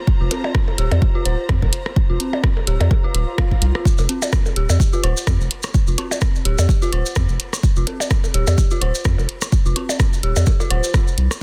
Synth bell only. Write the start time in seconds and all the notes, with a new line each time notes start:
0.21 F4
0.31 C4
0.78 G4
1.15 F4
1.25 C5
2.10 F4
2.20 C4
2.67 G4
3.04 F4
3.15 F4
3.75 F4
3.99 F4
4.09 C4
4.56 G4
4.93 F4
5.04 C5
5.88 F4
5.98 C4
6.45 G4
6.82 F4
6.93 C5
7.77 F4
7.87 C4
8.34 G4
8.71 F4
8.82 C5
9.66 F4
9.76 C4
10.23 G4
10.60 F4
10.70 C5